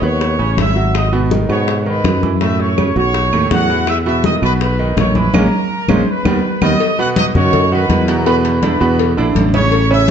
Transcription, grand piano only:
0.03 B3 B4
0.39 C#3 C#4
0.76 F#3 F#4
1.13 B2 B3
1.31 D#3 D#4
1.49 B2 B3
1.86 D#3 D#4
2.23 E3 E4
2.41 A2 A3
2.78 C#3 C#4
2.96 F#3 F#4
3.33 A2 A3
3.70 E3 E4
4.06 B2 B3
4.24 D#3 D#4
4.42 B2 B3
4.79 D#3 D#4
5.15 E3 E4
5.34 G#3 A#3 C#4
5.89 G#3 A#3 C#4
6.26 D#3 G3 B3
6.62 D#3 G3 B3
6.99 B2 B3 B4
7.35 D#3 D#4 F#4
7.72 D#3 D#4 F#4
8.08 B2 B3 B4
8.26 B2 B3 B4
8.63 D3 D4 E4
8.81 B2 B3 B4
9.17 D3 D4 E4
9.54 C#3 C#4 C#5
9.91 C#3 C#4 C#5

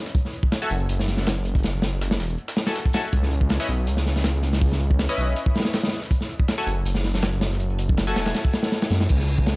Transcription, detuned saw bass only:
0.71 F#1
0.89 F#1
2.20 E1
3.13 C#2
3.69 B1
3.87 C#2
5.18 B1
6.67 F#1
6.85 F#1
8.16 E1
8.90 F#2
9.10 C#2

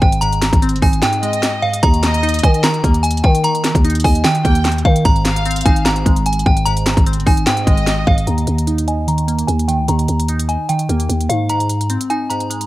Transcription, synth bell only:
0.02 G5
0.21 A#5
0.82 G#5
1.03 G5
1.62 F5
1.83 A#5
2.43 G#5
2.64 A#5
3.03 G#5
3.24 G5
3.44 A#5
4.04 G#5
4.24 G5
4.85 F5
5.05 A#5
5.65 G#5
5.85 A#5
6.26 G#5
6.46 G5
6.66 A#5
7.27 G#5
7.47 G5
8.07 F5
8.27 A#5
8.88 G#5
9.08 A#5
9.47 G#5
9.68 G5
9.89 A#5
10.49 G#5
10.69 G5
11.29 F5
11.50 A#5
12.10 G#5
12.30 A#5

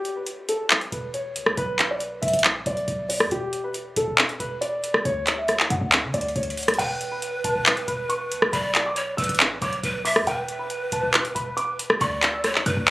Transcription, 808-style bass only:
0.92 E1
1.36 E2
1.57 B1
2.23 B1
2.33 A1
2.66 B1
2.88 B1
3.20 F#2
3.31 E1
3.96 E1
4.07 E1
4.40 E1
5.05 D2
5.70 F#2
5.81 D2
6.03 D3
6.14 D2
6.36 D2
6.79 E1
7.44 E1
7.55 E1
7.88 E1
8.31 E2
8.53 B1
9.18 B1
9.29 A1
9.62 B1
9.83 B1
10.16 F#2
10.27 E1
10.92 E1
11.03 E1
11.36 E1
12.01 D2
12.66 F#2
12.77 D2

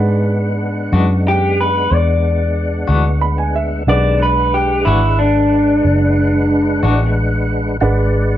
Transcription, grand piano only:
Already playing: G#3 D4 B4 F#5
3.21 B5
3.38 G#5
3.56 E5
3.88 G#3 D4 B4 F#5
7.81 G#3 D4 B4 F#5

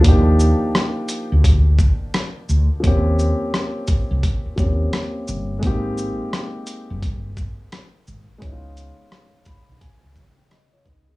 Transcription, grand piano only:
0.01 F3 A#3 D4
0.06 D#4 G4
2.80 F3 A#3 C4
2.85 C#4 G4
4.56 F3 A#3 C4 C#4 G4
5.59 G#3 A#3 C4
5.65 D#4 G4
8.38 G#3 B3 C#4
8.44 D#4 E4
8.52 F4
9.46 B5
9.81 G#5
10.38 G5
10.51 D#5
10.72 F4 C#5
10.85 D#4 B4
11.08 B3 G#4

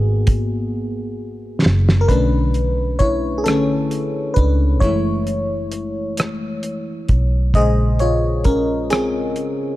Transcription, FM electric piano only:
Already playing: A#3 B3 F#4 G#4
2.01 A#4
2.08 D3 A3 C#4 D4 B4
2.99 E4 C#5
3.38 G#4
3.44 D3 A3 C#4 A4
4.34 D4 B4
4.80 E3 G#3 A3 E4 C#5
7.55 C#3 G#3 G#4 C5 D#5
8.00 F4 C#5
8.45 C#4 A#4
8.90 C4 G#4

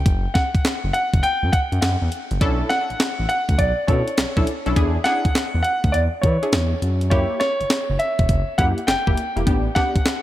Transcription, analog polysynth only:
2.41 C#4 D4 E4 A4
3.88 C#4 D4 E4 A4
4.37 C#4 D4 E4 A4
4.66 C#4 D4 E4 A4
4.76 D4 E4 G#4
5.05 D4 E4 G#4
6.42 D4 E4 G#4
7.11 A#3 E4 G4
8.58 A#3 E4 G4
9.07 A#3 E4 G4
9.36 A#3 E4 G4
9.46 B3 D4 G4
9.76 B3 D4 G4

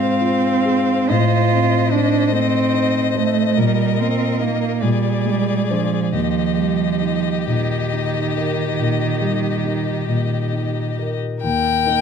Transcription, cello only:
Already playing: C4
1.10 F4
1.91 D4
2.32 C4
3.16 A3
3.57 G3
3.99 C4
4.41 A#3
4.83 G3
5.70 F3
6.15 F3
7.48 D#3

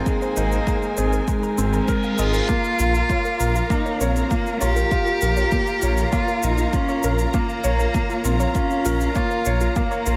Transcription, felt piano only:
Already playing: G#3 C4 D#4 G#4
0.07 G#3
0.37 D#4
0.67 G#3
0.97 G#4
1.28 G#3
1.58 C4
1.88 A#4
2.18 G#3
2.49 A#3
2.79 F4
3.10 F4
3.40 A#4
3.70 A#3
4.01 C#5
4.31 A#3
4.61 F4
4.91 F4
5.22 A#4
5.52 A#3
5.83 C#5
6.13 A#3
6.43 F4
6.74 F4
7.04 A#4
7.34 A#3
7.64 C#5
7.94 A#3
8.25 F4
8.55 F4
8.86 A#4
9.16 A#3
9.46 C#5
9.76 A#3
10.07 F4

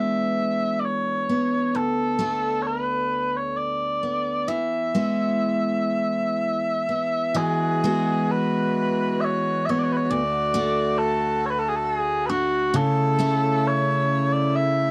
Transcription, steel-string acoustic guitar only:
Already playing: E3 G#3 B3 D4
1.29 B3
1.75 D2
2.19 A3 B3 D4
4.03 B3
4.48 E3
4.95 G#3 B3 E4
6.89 B3
7.35 E3
7.84 G#3 B3 F#4
9.69 B3
10.11 D2
10.54 A3 D4 F#4
12.29 D4
12.74 C#3
13.19 A3 C#4 E4

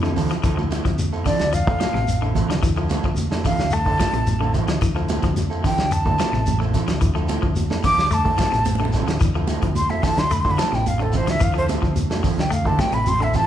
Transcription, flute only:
1.26 D5
1.54 F5
3.46 F5
3.73 A5
5.66 G5
5.93 A5
7.85 D6
8.13 A5
9.76 C6
9.90 E5
10.03 A5
10.19 C6
10.33 B5
10.41 C6
10.51 B5
10.59 A5
10.74 G5
10.88 F5
11.02 A4
11.17 C5
11.30 E5
11.43 F5
11.58 C5
12.40 G5
12.53 F5
12.67 A5
12.80 G5
12.94 B5
13.08 C6
13.23 E5
13.36 A5

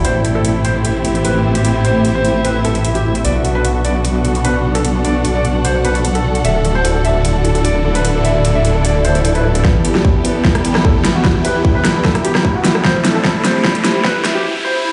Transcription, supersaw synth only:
Already playing: E4
0.05 A3 C4
3.25 B3 D4 F#4
6.45 D3 D4 E4
9.65 E2 E3 B3 G4
12.85 A2 C4 A4

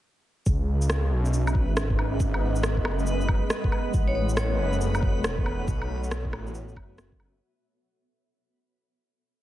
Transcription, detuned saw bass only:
0.46 C#2
1.11 B1
1.68 G#1
2.20 G#1
2.85 F#1
3.94 A1
4.58 F#1
5.16 E1
5.68 B1
6.32 A1
6.77 F#1
7.19 F#1

